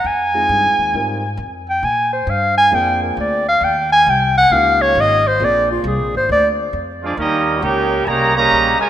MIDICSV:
0, 0, Header, 1, 7, 480
1, 0, Start_track
1, 0, Tempo, 445434
1, 52, Time_signature, 4, 2, 24, 8
1, 9586, End_track
2, 0, Start_track
2, 0, Title_t, "Clarinet"
2, 0, Program_c, 0, 71
2, 74, Note_on_c, 0, 80, 109
2, 1505, Note_off_c, 0, 80, 0
2, 1831, Note_on_c, 0, 79, 100
2, 1989, Note_on_c, 0, 80, 103
2, 2005, Note_off_c, 0, 79, 0
2, 2295, Note_off_c, 0, 80, 0
2, 2299, Note_on_c, 0, 72, 80
2, 2482, Note_on_c, 0, 77, 97
2, 2498, Note_off_c, 0, 72, 0
2, 2771, Note_off_c, 0, 77, 0
2, 2778, Note_on_c, 0, 80, 122
2, 2960, Note_on_c, 0, 79, 103
2, 2976, Note_off_c, 0, 80, 0
2, 3260, Note_off_c, 0, 79, 0
2, 3266, Note_on_c, 0, 70, 61
2, 3439, Note_off_c, 0, 70, 0
2, 3452, Note_on_c, 0, 74, 88
2, 3747, Note_off_c, 0, 74, 0
2, 3759, Note_on_c, 0, 77, 106
2, 3929, Note_on_c, 0, 79, 93
2, 3945, Note_off_c, 0, 77, 0
2, 4222, Note_off_c, 0, 79, 0
2, 4228, Note_on_c, 0, 80, 117
2, 4415, Note_on_c, 0, 79, 97
2, 4432, Note_off_c, 0, 80, 0
2, 4708, Note_off_c, 0, 79, 0
2, 4720, Note_on_c, 0, 78, 116
2, 4875, Note_on_c, 0, 77, 102
2, 4891, Note_off_c, 0, 78, 0
2, 5193, Note_on_c, 0, 73, 104
2, 5210, Note_off_c, 0, 77, 0
2, 5397, Note_on_c, 0, 75, 105
2, 5413, Note_off_c, 0, 73, 0
2, 5685, Note_on_c, 0, 72, 99
2, 5701, Note_off_c, 0, 75, 0
2, 5869, Note_on_c, 0, 74, 112
2, 5885, Note_off_c, 0, 72, 0
2, 6154, Note_off_c, 0, 74, 0
2, 6166, Note_on_c, 0, 65, 77
2, 6334, Note_on_c, 0, 68, 87
2, 6351, Note_off_c, 0, 65, 0
2, 6627, Note_off_c, 0, 68, 0
2, 6651, Note_on_c, 0, 72, 103
2, 6786, Note_off_c, 0, 72, 0
2, 6814, Note_on_c, 0, 74, 106
2, 6989, Note_off_c, 0, 74, 0
2, 9586, End_track
3, 0, Start_track
3, 0, Title_t, "Trumpet section"
3, 0, Program_c, 1, 61
3, 7578, Note_on_c, 1, 65, 81
3, 7583, Note_on_c, 1, 68, 84
3, 7586, Note_on_c, 1, 58, 80
3, 7589, Note_on_c, 1, 74, 94
3, 7728, Note_off_c, 1, 65, 0
3, 7730, Note_off_c, 1, 68, 0
3, 7732, Note_off_c, 1, 58, 0
3, 7733, Note_off_c, 1, 74, 0
3, 7742, Note_on_c, 1, 61, 88
3, 7742, Note_on_c, 1, 70, 91
3, 7745, Note_on_c, 1, 67, 92
3, 7749, Note_on_c, 1, 75, 113
3, 8183, Note_off_c, 1, 61, 0
3, 8183, Note_off_c, 1, 70, 0
3, 8184, Note_off_c, 1, 67, 0
3, 8187, Note_off_c, 1, 75, 0
3, 8225, Note_on_c, 1, 70, 88
3, 8225, Note_on_c, 1, 79, 100
3, 8230, Note_on_c, 1, 63, 93
3, 8230, Note_on_c, 1, 73, 94
3, 8655, Note_off_c, 1, 70, 0
3, 8656, Note_off_c, 1, 79, 0
3, 8658, Note_off_c, 1, 63, 0
3, 8658, Note_off_c, 1, 73, 0
3, 8667, Note_on_c, 1, 81, 85
3, 8699, Note_on_c, 1, 82, 116
3, 8700, Note_off_c, 1, 81, 0
3, 8705, Note_on_c, 1, 67, 99
3, 8705, Note_on_c, 1, 75, 95
3, 8707, Note_on_c, 1, 73, 95
3, 9004, Note_off_c, 1, 73, 0
3, 9004, Note_off_c, 1, 82, 0
3, 9010, Note_off_c, 1, 67, 0
3, 9010, Note_off_c, 1, 75, 0
3, 9017, Note_on_c, 1, 73, 101
3, 9017, Note_on_c, 1, 82, 120
3, 9021, Note_on_c, 1, 67, 105
3, 9022, Note_on_c, 1, 75, 103
3, 9455, Note_off_c, 1, 82, 0
3, 9456, Note_off_c, 1, 73, 0
3, 9458, Note_off_c, 1, 67, 0
3, 9458, Note_off_c, 1, 75, 0
3, 9484, Note_on_c, 1, 80, 102
3, 9485, Note_on_c, 1, 73, 88
3, 9486, Note_on_c, 1, 65, 90
3, 9489, Note_on_c, 1, 70, 91
3, 9559, Note_off_c, 1, 80, 0
3, 9560, Note_off_c, 1, 65, 0
3, 9560, Note_off_c, 1, 73, 0
3, 9562, Note_off_c, 1, 70, 0
3, 9586, End_track
4, 0, Start_track
4, 0, Title_t, "Grand piano"
4, 0, Program_c, 2, 0
4, 365, Note_on_c, 2, 56, 54
4, 368, Note_on_c, 2, 60, 51
4, 374, Note_on_c, 2, 63, 49
4, 376, Note_on_c, 2, 68, 65
4, 378, Note_on_c, 2, 65, 51
4, 980, Note_off_c, 2, 56, 0
4, 981, Note_off_c, 2, 60, 0
4, 985, Note_off_c, 2, 63, 0
4, 985, Note_off_c, 2, 68, 0
4, 986, Note_off_c, 2, 65, 0
4, 1010, Note_on_c, 2, 60, 50
4, 1013, Note_on_c, 2, 63, 49
4, 1014, Note_on_c, 2, 55, 53
4, 1021, Note_on_c, 2, 65, 51
4, 1024, Note_on_c, 2, 70, 59
4, 1294, Note_off_c, 2, 60, 0
4, 1295, Note_off_c, 2, 63, 0
4, 1296, Note_off_c, 2, 55, 0
4, 1299, Note_off_c, 2, 65, 0
4, 1300, Note_off_c, 2, 70, 0
4, 2922, Note_on_c, 2, 58, 71
4, 2932, Note_on_c, 2, 60, 66
4, 2932, Note_on_c, 2, 62, 65
4, 2933, Note_on_c, 2, 65, 62
4, 2937, Note_on_c, 2, 68, 71
4, 3659, Note_off_c, 2, 58, 0
4, 3664, Note_off_c, 2, 60, 0
4, 3664, Note_off_c, 2, 62, 0
4, 3664, Note_off_c, 2, 65, 0
4, 3666, Note_off_c, 2, 68, 0
4, 4862, Note_on_c, 2, 61, 55
4, 4865, Note_on_c, 2, 58, 63
4, 4870, Note_on_c, 2, 65, 54
4, 4872, Note_on_c, 2, 63, 56
4, 4877, Note_on_c, 2, 67, 67
4, 5588, Note_off_c, 2, 61, 0
4, 5590, Note_off_c, 2, 58, 0
4, 5593, Note_off_c, 2, 65, 0
4, 5594, Note_off_c, 2, 63, 0
4, 5596, Note_off_c, 2, 67, 0
4, 5821, Note_on_c, 2, 60, 62
4, 5823, Note_on_c, 2, 58, 66
4, 5826, Note_on_c, 2, 62, 63
4, 5829, Note_on_c, 2, 65, 63
4, 5835, Note_on_c, 2, 68, 74
4, 7156, Note_off_c, 2, 60, 0
4, 7157, Note_off_c, 2, 58, 0
4, 7159, Note_off_c, 2, 62, 0
4, 7160, Note_off_c, 2, 65, 0
4, 7163, Note_off_c, 2, 68, 0
4, 9586, End_track
5, 0, Start_track
5, 0, Title_t, "Trombone section"
5, 0, Program_c, 3, 61
5, 7568, Note_on_c, 3, 56, 78
5, 7571, Note_on_c, 3, 62, 81
5, 7576, Note_on_c, 3, 53, 78
5, 7722, Note_off_c, 3, 56, 0
5, 7722, Note_on_c, 3, 63, 87
5, 7723, Note_off_c, 3, 62, 0
5, 7725, Note_on_c, 3, 58, 93
5, 7726, Note_off_c, 3, 53, 0
5, 7729, Note_on_c, 3, 55, 88
5, 8172, Note_off_c, 3, 63, 0
5, 8174, Note_off_c, 3, 58, 0
5, 8176, Note_off_c, 3, 55, 0
5, 8204, Note_on_c, 3, 67, 94
5, 8205, Note_on_c, 3, 61, 97
5, 8207, Note_on_c, 3, 58, 92
5, 8645, Note_off_c, 3, 61, 0
5, 8645, Note_off_c, 3, 67, 0
5, 8646, Note_off_c, 3, 58, 0
5, 8688, Note_on_c, 3, 58, 99
5, 8689, Note_on_c, 3, 49, 91
5, 8690, Note_on_c, 3, 55, 99
5, 8984, Note_off_c, 3, 58, 0
5, 8990, Note_off_c, 3, 55, 0
5, 8992, Note_off_c, 3, 49, 0
5, 8997, Note_on_c, 3, 58, 96
5, 9003, Note_on_c, 3, 55, 94
5, 9005, Note_on_c, 3, 49, 103
5, 9445, Note_off_c, 3, 58, 0
5, 9448, Note_off_c, 3, 55, 0
5, 9449, Note_off_c, 3, 49, 0
5, 9477, Note_on_c, 3, 56, 83
5, 9553, Note_off_c, 3, 56, 0
5, 9586, End_track
6, 0, Start_track
6, 0, Title_t, "Upright bass"
6, 0, Program_c, 4, 32
6, 46, Note_on_c, 4, 41, 87
6, 515, Note_off_c, 4, 41, 0
6, 529, Note_on_c, 4, 43, 103
6, 683, Note_on_c, 4, 41, 57
6, 699, Note_off_c, 4, 43, 0
6, 839, Note_off_c, 4, 41, 0
6, 846, Note_on_c, 4, 39, 69
6, 998, Note_off_c, 4, 39, 0
6, 1004, Note_on_c, 4, 44, 82
6, 1475, Note_off_c, 4, 44, 0
6, 1480, Note_on_c, 4, 41, 93
6, 1953, Note_off_c, 4, 41, 0
6, 1968, Note_on_c, 4, 46, 88
6, 2437, Note_off_c, 4, 46, 0
6, 2445, Note_on_c, 4, 43, 99
6, 2916, Note_off_c, 4, 43, 0
6, 2928, Note_on_c, 4, 41, 87
6, 3397, Note_off_c, 4, 41, 0
6, 3414, Note_on_c, 4, 38, 93
6, 3881, Note_off_c, 4, 38, 0
6, 3887, Note_on_c, 4, 39, 93
6, 4357, Note_off_c, 4, 39, 0
6, 4380, Note_on_c, 4, 36, 100
6, 4843, Note_off_c, 4, 36, 0
6, 4849, Note_on_c, 4, 37, 88
6, 5317, Note_off_c, 4, 37, 0
6, 5338, Note_on_c, 4, 32, 97
6, 5802, Note_off_c, 4, 32, 0
6, 5816, Note_on_c, 4, 34, 95
6, 6281, Note_off_c, 4, 34, 0
6, 6290, Note_on_c, 4, 36, 102
6, 6450, Note_off_c, 4, 36, 0
6, 6450, Note_on_c, 4, 34, 66
6, 6612, Note_off_c, 4, 34, 0
6, 6621, Note_on_c, 4, 32, 73
6, 6766, Note_off_c, 4, 32, 0
6, 6780, Note_on_c, 4, 38, 91
6, 7242, Note_off_c, 4, 38, 0
6, 7252, Note_on_c, 4, 41, 94
6, 7717, Note_off_c, 4, 41, 0
6, 7730, Note_on_c, 4, 39, 92
6, 8196, Note_off_c, 4, 39, 0
6, 8214, Note_on_c, 4, 37, 99
6, 8678, Note_off_c, 4, 37, 0
6, 8692, Note_on_c, 4, 36, 88
6, 9156, Note_off_c, 4, 36, 0
6, 9173, Note_on_c, 4, 34, 93
6, 9461, Note_off_c, 4, 34, 0
6, 9586, End_track
7, 0, Start_track
7, 0, Title_t, "Muted upright bass strokes"
7, 9477, Note_on_c, 9, 29, 43
7, 9585, Note_off_c, 9, 29, 0
7, 9586, End_track
0, 0, End_of_file